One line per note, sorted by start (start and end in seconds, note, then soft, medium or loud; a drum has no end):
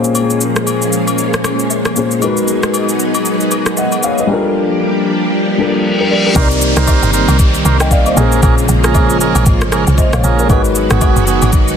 0.00 1.91 A#2 medium
0.00 2.20 F3 medium
0.00 4.25 G#3 medium
0.00 1.92 A#3 medium
0.00 2.20 A#3 medium
0.00 1.92 C#4 medium
0.00 2.20 C#4 medium
0.00 1.93 G#4 medium
0.00 2.20 G#4 medium
0.00 1.94 C5 medium
0.04 shaker soft
0.15 high agogo medium
0.15 shaker medium
0.30 shaker soft
0.41 shaker medium
0.56 cross-stick medium
0.56 shaker medium
0.67 high agogo medium
0.67 shaker medium
0.82 shaker medium
0.93 shaker medium
1.08 high agogo medium
1.08 shaker soft
1.18 shaker medium
1.34 cross-stick medium
1.34 shaker soft
1.44 cross-stick medium
1.44 high agogo medium
1.44 shaker medium
1.59 shaker medium
1.70 low woodblock medium
1.70 shaker medium
1.85 cross-stick medium
1.85 high agogo medium
1.85 shaker soft
1.95 2.21 A#2 medium
1.95 2.22 A#3 soft
1.95 2.22 C#4 soft
1.95 2.23 G#4 medium
1.95 2.23 C5 medium
1.95 shaker medium
2.11 shaker soft
2.19 4.27 F#3 medium
2.19 4.24 G#3 medium
2.19 4.27 B3 medium
2.19 4.24 D#4 medium
2.19 4.27 D#4 medium
2.19 4.25 F#4 medium
2.19 4.27 G#4 medium
2.19 high agogo medium
2.19 shaker medium
2.24 3.50 A#4 medium
2.24 3.51 B4 medium
2.37 shaker soft
2.48 shaker medium
2.63 cross-stick medium
2.63 shaker soft
2.74 high agogo medium
2.74 shaker medium
2.89 shaker medium
3.00 shaker medium
3.15 high agogo medium
3.15 shaker soft
3.25 shaker medium
3.41 shaker soft
3.51 high agogo medium
3.51 shaker medium
3.66 cross-stick medium
3.66 shaker medium
3.77 4.02 D#5 medium
3.77 4.02 F#5 medium
3.77 low woodblock medium
3.77 shaker medium
3.92 high agogo medium
3.92 shaker soft
4.03 4.18 C#5 medium
4.03 4.18 F5 medium
4.03 shaker medium
4.18 4.43 B4 medium
4.18 4.43 D#5 medium
4.18 shaker soft
4.27 6.34 F3 medium
4.27 5.55 G3 medium
4.27 6.34 G3 medium
4.27 6.34 A#3 medium
4.27 5.55 D4 medium
4.27 6.34 D4 medium
4.27 5.56 F4 medium
4.27 6.34 G4 medium
4.32 5.57 A4 medium
4.32 5.58 A#4 medium
5.33 reverse cymbal medium
5.58 6.36 G3 medium
5.58 6.36 D4 medium
5.58 6.36 F4 medium
5.58 5.85 A4 medium
5.58 5.85 A#4 medium
6.00 6.10 G4 medium
6.00 6.10 A#4 medium
6.11 6.24 A#4 medium
6.11 6.25 D5 medium
6.26 6.50 G4 medium
6.26 6.37 A#4 medium
6.34 6.74 C2 loud
6.34 8.12 C3 medium
6.34 8.15 D#3 medium
6.34 8.15 G3 medium
6.34 10.46 A#3 medium
6.34 8.13 C4 medium
6.34 8.15 C4 medium
6.34 6.48 D#4 loud
6.34 8.14 D#4 medium
6.34 8.15 G4 loud
6.34 6.48 A#4 medium
6.34 6.48 C5 loud
6.34 kick loud
6.34 downlifter medium
6.34 high agogo medium
6.34 shaker medium
6.38 8.14 A#4 medium
6.38 7.65 D5 medium
6.51 shaker soft
6.62 shaker medium
6.76 7.01 C2 medium
6.76 7.11 D#4 medium
6.76 7.11 A#4 medium
6.76 7.11 C5 medium
6.76 cross-stick medium
6.76 shaker medium
6.88 kick medium
6.88 high agogo medium
6.88 low woodblock medium
6.88 shaker medium
7.03 7.27 G1 medium
7.03 shaker medium
7.13 7.37 D#4 medium
7.13 7.38 A#4 medium
7.13 7.38 C5 medium
7.13 shaker medium
7.28 7.63 C2 loud
7.28 high agogo medium
7.28 shaker medium
7.39 kick loud
7.39 shaker medium
7.54 shaker medium
7.65 8.14 C2 medium
7.65 7.77 D#4 medium
7.65 7.78 A#4 medium
7.65 7.78 C5 medium
7.65 high agogo medium
7.65 shaker medium
7.80 7.91 D#5 medium
7.80 7.91 G5 medium
7.80 cross-stick loud
7.80 shaker medium
7.91 8.06 D5 medium
7.91 8.06 F5 medium
7.91 kick loud
7.91 low woodblock medium
7.91 shaker medium
8.06 8.20 C5 medium
8.06 8.31 D#5 medium
8.06 high agogo medium
8.06 shaker medium
8.15 8.41 A#1 loud
8.15 10.19 A#2 medium
8.15 10.47 C#3 medium
8.15 10.47 F3 medium
8.15 10.48 G#3 medium
8.15 10.19 A#3 medium
8.15 8.24 C4 medium
8.15 8.41 C#4 medium
8.15 10.47 F4 medium
8.15 8.41 G#4 medium
8.15 8.41 A#4 medium
8.15 shaker loud
8.19 10.21 G#4 medium
8.19 9.96 C5 medium
8.24 10.23 C#4 medium
8.32 shaker medium
8.43 8.67 A#1 loud
8.43 8.55 C#4 loud
8.43 8.55 G#4 medium
8.43 8.55 A#4 loud
8.43 kick loud
8.43 high agogo medium
8.43 shaker medium
8.58 shaker soft
8.69 9.11 A#1 loud
8.69 shaker medium
8.84 9.18 C#4 medium
8.84 9.18 G#4 medium
8.84 9.18 A#4 medium
8.84 cross-stick medium
8.84 shaker medium
8.94 kick loud
8.94 high agogo medium
8.94 low woodblock medium
8.94 shaker medium
9.10 9.34 G#1 medium
9.10 shaker medium
9.20 9.44 C#4 medium
9.20 9.45 G#4 medium
9.20 9.45 A#4 medium
9.20 shaker medium
9.35 9.46 A#1 medium
9.35 high agogo medium
9.35 shaker medium
9.46 9.85 G#1 loud
9.46 kick loud
9.46 shaker medium
9.61 cross-stick loud
9.61 shaker soft
9.72 9.84 C#4 medium
9.72 9.85 G#4 medium
9.72 9.85 A#4 medium
9.72 cross-stick loud
9.72 high agogo medium
9.72 shaker medium
9.87 9.97 C2 medium
9.87 shaker medium
9.98 10.13 C5 medium
9.98 10.13 D#5 medium
9.98 kick medium
9.98 low woodblock medium
9.98 shaker medium
10.13 10.23 A#1 loud
10.13 10.38 C#5 medium
10.13 10.38 F5 medium
10.13 cross-stick loud
10.13 high agogo medium
10.13 shaker medium
10.24 10.48 A#1 medium
10.24 10.48 C#4 medium
10.24 10.48 G#4 medium
10.24 10.48 A#4 medium
10.24 shaker loud
10.39 10.51 A#4 medium
10.39 10.64 C#5 medium
10.39 shaker medium
10.47 10.88 G#1 loud
10.47 11.77 D#3 medium
10.47 11.77 F#3 medium
10.47 11.77 G#3 medium
10.47 10.62 B3 loud
10.47 11.77 B3 medium
10.47 11.77 D#4 medium
10.47 10.62 F#4 medium
10.47 11.77 F#4 medium
10.47 10.62 G#4 loud
10.47 kick loud
10.47 high agogo medium
10.47 shaker medium
10.52 11.77 A#4 medium
10.52 11.77 B4 medium
10.65 shaker medium
10.75 shaker medium
10.90 11.15 G#1 loud
10.90 11.25 B3 medium
10.90 11.25 F#4 medium
10.90 11.25 G#4 medium
10.90 cross-stick medium
10.90 shaker medium
11.01 kick medium
11.01 high agogo medium
11.01 low woodblock medium
11.01 shaker medium
11.16 11.41 F#1 loud
11.16 shaker medium
11.27 11.51 B3 medium
11.27 11.51 F#4 medium
11.27 11.52 G#4 medium
11.27 shaker medium
11.42 11.77 G#1 medium
11.42 high agogo medium
11.42 shaker medium
11.53 kick loud
11.53 shaker medium
11.68 shaker medium